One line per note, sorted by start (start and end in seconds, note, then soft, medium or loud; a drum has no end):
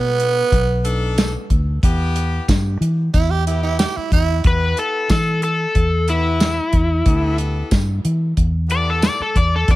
0.00 0.42 B2 loud
0.00 1.13 B3 loud
0.20 closed hi-hat medium
0.52 1.35 B1 loud
0.52 kick medium
0.52 closed hi-hat medium
0.84 1.34 D4 medium
0.84 1.35 D#4 medium
0.84 1.35 A4 loud
0.84 closed hi-hat medium
1.18 snare loud
1.18 closed hi-hat medium
1.18 tambourine loud
1.50 1.78 D2 medium
1.50 kick medium
1.50 closed hi-hat medium
1.82 2.38 E2 loud
1.82 2.48 B3 medium
1.82 2.48 E4 medium
1.82 2.49 G4 loud
1.82 kick loud
1.82 closed hi-hat loud
2.16 closed hi-hat medium
2.48 2.76 G2 loud
2.48 kick medium
2.48 snare loud
2.48 closed hi-hat loud
2.48 tambourine loud
2.81 3.08 E3 medium
2.81 closed hi-hat medium
3.14 3.84 E2 loud
3.14 3.32 E4 loud
3.14 kick medium
3.14 closed hi-hat medium
3.31 3.45 G4 medium
3.46 3.96 B3 medium
3.46 3.97 E4 medium
3.46 3.63 E4 medium
3.46 3.97 G4 medium
3.46 closed hi-hat medium
3.63 3.78 E4 medium
3.79 3.98 G4 medium
3.79 snare loud
3.79 closed hi-hat medium
3.79 tambourine loud
3.97 4.11 E4 medium
3.97 muted fingered electric bass stroke soft
4.12 4.39 E2 loud
4.12 4.44 E4 loud
4.12 kick medium
4.12 closed hi-hat medium
4.43 4.72 E2 medium
4.43 5.09 B3 medium
4.43 5.10 E4 medium
4.43 5.10 G4 medium
4.43 5.10 B4 medium
4.43 4.78 B4 medium
4.43 kick loud
4.43 closed hi-hat medium
4.77 5.10 A4 medium
4.77 closed hi-hat medium
5.10 5.65 E3 medium
5.10 5.42 A4 medium
5.10 kick medium
5.10 snare loud
5.10 closed hi-hat medium
5.10 tambourine loud
5.42 6.07 A4 loud
5.42 closed hi-hat medium
5.75 6.58 E2 loud
5.75 kick medium
5.75 closed hi-hat medium
6.08 6.58 B3 medium
6.08 6.58 E4 medium
6.08 7.36 E4 loud
6.08 6.58 G4 medium
6.08 6.59 B4 medium
6.08 closed hi-hat medium
6.40 snare loud
6.40 closed hi-hat medium
6.40 tambourine loud
6.73 7.01 E2 medium
6.73 kick medium
6.73 closed hi-hat medium
7.05 7.61 D2 medium
7.05 7.71 B3 medium
7.05 7.71 E4 medium
7.05 7.71 G4 medium
7.05 7.72 A4 medium
7.05 kick loud
7.05 closed hi-hat medium
7.38 closed hi-hat medium
7.71 7.99 G2 medium
7.71 kick medium
7.71 snare loud
7.71 closed hi-hat medium
7.71 tambourine loud
8.05 8.32 E3 medium
8.05 closed hi-hat medium
8.37 9.07 E2 medium
8.37 kick medium
8.37 closed hi-hat medium
8.68 9.19 B3 medium
8.68 9.19 E4 medium
8.68 9.19 G4 medium
8.68 9.20 A4 medium
8.68 closed hi-hat medium
8.72 8.88 D5 loud
8.90 9.03 A4 medium
9.02 9.20 D5 medium
9.02 snare loud
9.02 closed hi-hat medium
9.02 tambourine loud
9.20 9.36 A4 medium
9.20 muted fingered electric bass stroke soft
9.35 9.63 E2 medium
9.35 9.53 D5 medium
9.35 kick medium
9.35 closed hi-hat medium
9.56 9.69 A4 loud
9.68 9.76 E2 loud
9.68 9.76 B3 medium
9.68 9.76 E4 medium
9.68 9.76 G4 medium
9.68 9.76 B4 medium
9.68 9.76 D5 medium
9.68 kick loud
9.68 closed hi-hat medium